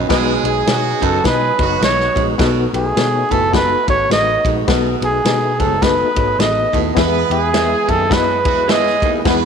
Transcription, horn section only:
0, 0, Header, 1, 2, 480
1, 0, Start_track
1, 0, Tempo, 571973
1, 86, Time_signature, 4, 2, 24, 8
1, 7930, End_track
2, 0, Start_track
2, 0, Title_t, "Horn section"
2, 0, Program_c, 0, 61
2, 91, Note_on_c, 0, 56, 125
2, 94, Note_on_c, 0, 68, 127
2, 540, Note_off_c, 0, 56, 0
2, 542, Note_off_c, 0, 68, 0
2, 582, Note_on_c, 0, 54, 98
2, 584, Note_on_c, 0, 66, 127
2, 1027, Note_off_c, 0, 54, 0
2, 1028, Note_off_c, 0, 66, 0
2, 1048, Note_on_c, 0, 56, 92
2, 1051, Note_on_c, 0, 68, 92
2, 1278, Note_off_c, 0, 56, 0
2, 1280, Note_off_c, 0, 68, 0
2, 1338, Note_on_c, 0, 54, 106
2, 1341, Note_on_c, 0, 66, 115
2, 1788, Note_off_c, 0, 54, 0
2, 1790, Note_off_c, 0, 66, 0
2, 5845, Note_on_c, 0, 71, 127
2, 5846, Note_on_c, 0, 59, 121
2, 6298, Note_off_c, 0, 59, 0
2, 6298, Note_off_c, 0, 71, 0
2, 6325, Note_on_c, 0, 56, 98
2, 6325, Note_on_c, 0, 68, 107
2, 6778, Note_off_c, 0, 56, 0
2, 6778, Note_off_c, 0, 68, 0
2, 6806, Note_on_c, 0, 54, 98
2, 6808, Note_on_c, 0, 66, 94
2, 7037, Note_off_c, 0, 54, 0
2, 7038, Note_off_c, 0, 66, 0
2, 7092, Note_on_c, 0, 54, 87
2, 7093, Note_on_c, 0, 66, 111
2, 7247, Note_off_c, 0, 54, 0
2, 7248, Note_off_c, 0, 66, 0
2, 7288, Note_on_c, 0, 56, 105
2, 7288, Note_on_c, 0, 68, 113
2, 7649, Note_off_c, 0, 56, 0
2, 7649, Note_off_c, 0, 68, 0
2, 7769, Note_on_c, 0, 71, 127
2, 7771, Note_on_c, 0, 59, 116
2, 7930, Note_off_c, 0, 59, 0
2, 7930, Note_off_c, 0, 71, 0
2, 7930, End_track
0, 0, End_of_file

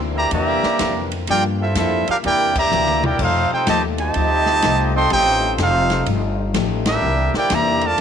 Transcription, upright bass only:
0, 0, Header, 1, 3, 480
1, 0, Start_track
1, 0, Key_signature, 0, "major"
1, 0, Tempo, 479616
1, 1269, Time_signature, 4, 2, 24, 8
1, 8013, End_track
2, 0, Start_track
2, 0, Title_t, "Upright bass"
2, 0, Program_c, 0, 32
2, 0, Note_on_c, 0, 38, 93
2, 295, Note_off_c, 0, 38, 0
2, 314, Note_on_c, 0, 40, 89
2, 608, Note_off_c, 0, 40, 0
2, 798, Note_on_c, 0, 41, 91
2, 1259, Note_off_c, 0, 41, 0
2, 1285, Note_on_c, 0, 43, 88
2, 1743, Note_off_c, 0, 43, 0
2, 1753, Note_on_c, 0, 41, 93
2, 2048, Note_off_c, 0, 41, 0
2, 2248, Note_on_c, 0, 40, 93
2, 2705, Note_off_c, 0, 40, 0
2, 2718, Note_on_c, 0, 38, 95
2, 3179, Note_off_c, 0, 38, 0
2, 3194, Note_on_c, 0, 41, 88
2, 3488, Note_off_c, 0, 41, 0
2, 3673, Note_on_c, 0, 39, 101
2, 4137, Note_off_c, 0, 39, 0
2, 4158, Note_on_c, 0, 38, 89
2, 4619, Note_off_c, 0, 38, 0
2, 4634, Note_on_c, 0, 36, 94
2, 5097, Note_off_c, 0, 36, 0
2, 5114, Note_on_c, 0, 33, 98
2, 5577, Note_off_c, 0, 33, 0
2, 5589, Note_on_c, 0, 29, 109
2, 6055, Note_off_c, 0, 29, 0
2, 6069, Note_on_c, 0, 31, 89
2, 6535, Note_off_c, 0, 31, 0
2, 6548, Note_on_c, 0, 33, 95
2, 7015, Note_off_c, 0, 33, 0
2, 7027, Note_on_c, 0, 36, 94
2, 7325, Note_off_c, 0, 36, 0
2, 7515, Note_on_c, 0, 40, 106
2, 7979, Note_off_c, 0, 40, 0
2, 8013, End_track
3, 0, Start_track
3, 0, Title_t, "Muted upright bass strokes"
3, 639, Note_on_c, 9, 29, 46
3, 739, Note_off_c, 9, 29, 0
3, 2083, Note_on_c, 9, 29, 42
3, 2184, Note_off_c, 9, 29, 0
3, 3522, Note_on_c, 9, 29, 36
3, 3622, Note_off_c, 9, 29, 0
3, 7349, Note_on_c, 9, 29, 44
3, 7449, Note_off_c, 9, 29, 0
3, 8013, End_track
0, 0, End_of_file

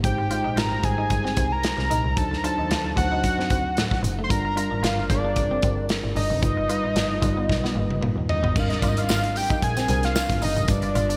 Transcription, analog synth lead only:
0, 0, Header, 1, 2, 480
1, 0, Start_track
1, 0, Tempo, 532387
1, 36, Time_signature, 4, 2, 24, 8
1, 10068, End_track
2, 0, Start_track
2, 0, Title_t, "Analog synth lead"
2, 0, Program_c, 0, 81
2, 41, Note_on_c, 0, 79, 90
2, 523, Note_on_c, 0, 82, 100
2, 536, Note_off_c, 0, 79, 0
2, 762, Note_on_c, 0, 80, 104
2, 776, Note_off_c, 0, 82, 0
2, 1372, Note_on_c, 0, 82, 102
2, 1385, Note_off_c, 0, 80, 0
2, 1962, Note_on_c, 0, 81, 92
2, 1975, Note_off_c, 0, 82, 0
2, 2137, Note_off_c, 0, 81, 0
2, 2143, Note_on_c, 0, 82, 67
2, 2202, Note_on_c, 0, 81, 97
2, 2215, Note_off_c, 0, 82, 0
2, 2676, Note_off_c, 0, 81, 0
2, 2682, Note_on_c, 0, 78, 83
2, 3603, Note_off_c, 0, 78, 0
2, 3820, Note_on_c, 0, 84, 78
2, 3879, Note_on_c, 0, 82, 102
2, 3893, Note_off_c, 0, 84, 0
2, 4362, Note_on_c, 0, 77, 94
2, 4376, Note_off_c, 0, 82, 0
2, 4594, Note_off_c, 0, 77, 0
2, 4599, Note_on_c, 0, 74, 77
2, 5282, Note_off_c, 0, 74, 0
2, 5557, Note_on_c, 0, 75, 116
2, 7202, Note_off_c, 0, 75, 0
2, 7478, Note_on_c, 0, 75, 93
2, 7748, Note_on_c, 0, 77, 76
2, 7762, Note_off_c, 0, 75, 0
2, 7838, Note_on_c, 0, 75, 70
2, 7851, Note_off_c, 0, 77, 0
2, 7920, Note_on_c, 0, 74, 64
2, 7934, Note_off_c, 0, 75, 0
2, 8009, Note_on_c, 0, 75, 78
2, 8023, Note_off_c, 0, 74, 0
2, 8096, Note_on_c, 0, 77, 98
2, 8109, Note_off_c, 0, 75, 0
2, 8446, Note_on_c, 0, 79, 91
2, 8460, Note_off_c, 0, 77, 0
2, 8683, Note_off_c, 0, 79, 0
2, 8688, Note_on_c, 0, 80, 96
2, 9057, Note_on_c, 0, 77, 96
2, 9071, Note_off_c, 0, 80, 0
2, 9404, Note_off_c, 0, 77, 0
2, 9414, Note_on_c, 0, 75, 89
2, 9651, Note_on_c, 0, 74, 87
2, 9664, Note_off_c, 0, 75, 0
2, 10068, Note_off_c, 0, 74, 0
2, 10068, End_track
0, 0, End_of_file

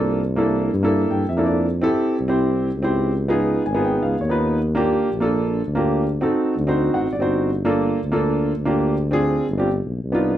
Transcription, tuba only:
0, 0, Header, 1, 2, 480
1, 0, Start_track
1, 0, Key_signature, -2, "minor"
1, 0, Tempo, 364742
1, 251, Time_signature, 4, 2, 24, 8
1, 13653, End_track
2, 0, Start_track
2, 0, Title_t, "Tuba"
2, 0, Program_c, 0, 58
2, 0, Note_on_c, 0, 36, 80
2, 898, Note_off_c, 0, 36, 0
2, 967, Note_on_c, 0, 43, 91
2, 1416, Note_off_c, 0, 43, 0
2, 1442, Note_on_c, 0, 43, 75
2, 1670, Note_off_c, 0, 43, 0
2, 1689, Note_on_c, 0, 41, 88
2, 2458, Note_off_c, 0, 41, 0
2, 2888, Note_on_c, 0, 36, 84
2, 3560, Note_off_c, 0, 36, 0
2, 3613, Note_on_c, 0, 37, 89
2, 4736, Note_off_c, 0, 37, 0
2, 4805, Note_on_c, 0, 32, 89
2, 5255, Note_off_c, 0, 32, 0
2, 5285, Note_on_c, 0, 37, 70
2, 5512, Note_off_c, 0, 37, 0
2, 5520, Note_on_c, 0, 39, 93
2, 6649, Note_off_c, 0, 39, 0
2, 6728, Note_on_c, 0, 34, 78
2, 7399, Note_off_c, 0, 34, 0
2, 7448, Note_on_c, 0, 38, 87
2, 8216, Note_off_c, 0, 38, 0
2, 8651, Note_on_c, 0, 38, 96
2, 9097, Note_off_c, 0, 38, 0
2, 9131, Note_on_c, 0, 33, 72
2, 9354, Note_off_c, 0, 33, 0
2, 9372, Note_on_c, 0, 31, 80
2, 10494, Note_off_c, 0, 31, 0
2, 10562, Note_on_c, 0, 38, 88
2, 11235, Note_off_c, 0, 38, 0
2, 11275, Note_on_c, 0, 38, 83
2, 12404, Note_off_c, 0, 38, 0
2, 12482, Note_on_c, 0, 31, 90
2, 12931, Note_off_c, 0, 31, 0
2, 12965, Note_on_c, 0, 35, 68
2, 13189, Note_off_c, 0, 35, 0
2, 13205, Note_on_c, 0, 36, 79
2, 13653, Note_off_c, 0, 36, 0
2, 13653, End_track
0, 0, End_of_file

